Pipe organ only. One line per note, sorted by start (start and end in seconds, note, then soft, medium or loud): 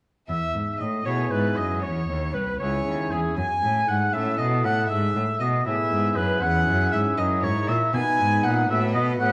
0.29 0.52 E2 soft
0.56 0.78 G#2 soft
0.82 1.04 A2 medium
1.07 1.30 B2 medium
1.07 1.54 B3 soft
1.07 1.80 E4 soft
1.07 1.80 G#4 soft
1.33 1.55 G#2 medium
1.58 1.81 F#2 soft
1.84 2.07 E2 medium
2.10 2.32 D#2 medium
2.35 2.57 C2 medium
2.61 2.84 C#2 medium
2.61 3.34 C#4 soft
2.61 3.34 E4 soft
2.61 3.34 G#4 soft
2.86 3.09 D#2 medium
3.12 3.35 E2 soft
3.38 3.61 F#2 medium
3.64 3.86 A2 medium
3.89 4.11 G#2 medium
4.14 4.37 A2 medium
4.14 4.37 C#4 soft
4.14 4.86 E4 soft
4.14 4.86 A4 medium
4.40 4.62 B2 medium
4.65 4.87 A2 medium
4.90 5.13 G#2 medium
4.90 5.15 G#3 medium
5.16 5.38 A2 medium
5.41 5.64 B2 medium
5.66 5.89 A2 medium
5.66 6.13 B3 medium
5.66 6.38 E4 medium
5.66 6.39 G#4 medium
5.92 6.14 G#2 medium
6.16 6.39 F#2 medium
6.42 6.65 E2 medium
6.42 7.14 C#4 soft
6.42 7.14 E4 medium
6.42 7.14 G#4 soft
6.67 6.90 F#2 medium
6.92 7.15 G#2 medium
7.17 7.41 F#2 medium
7.17 7.41 C#4 soft
7.17 7.90 E4 medium
7.17 7.90 A#4 medium
7.43 7.66 G#2 medium
7.68 7.91 A#2 medium
7.93 8.16 B2 medium
7.93 8.66 B3 medium
7.93 8.66 D#4 soft
7.93 8.66 B4 soft
8.19 8.42 G#2 medium
8.43 8.67 A#2 medium
8.69 8.92 A2 medium
8.69 9.32 B3 soft
8.69 9.32 F#4 soft
8.69 9.32 B4 soft
8.94 9.18 B2 medium
9.20 9.32 A2 medium